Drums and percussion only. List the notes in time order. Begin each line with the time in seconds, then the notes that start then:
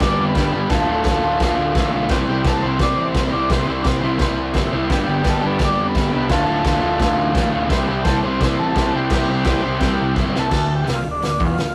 0.00 kick, snare, crash
0.35 kick, snare, crash
0.70 kick, snare, crash
1.04 kick, snare, crash
1.40 kick, snare, crash
1.75 kick, snare, crash
2.09 kick, snare, crash
2.44 kick, snare, crash
2.79 kick, snare, crash
3.14 kick, snare, crash
3.50 kick, snare, crash
3.84 kick, snare, crash
4.19 kick, snare, crash
4.54 kick, snare, crash
4.90 kick, snare, crash
5.24 kick, snare, crash
5.59 kick, snare, crash
5.95 kick, snare, crash
6.29 kick, snare, crash
6.65 kick, snare, crash
7.00 kick, snare, crash
7.35 kick, snare, crash
7.70 kick, snare, crash
8.05 kick, snare, crash
8.41 kick, snare, crash
8.76 kick, snare, crash
9.10 kick, snare, crash
9.44 kick, snare, crash
9.80 kick, snare, crash
10.16 kick, snare
10.36 snare
10.51 kick, snare, crash
10.87 snare, open hi-hat
11.22 snare, open hi-hat
11.40 kick
11.58 snare, open hi-hat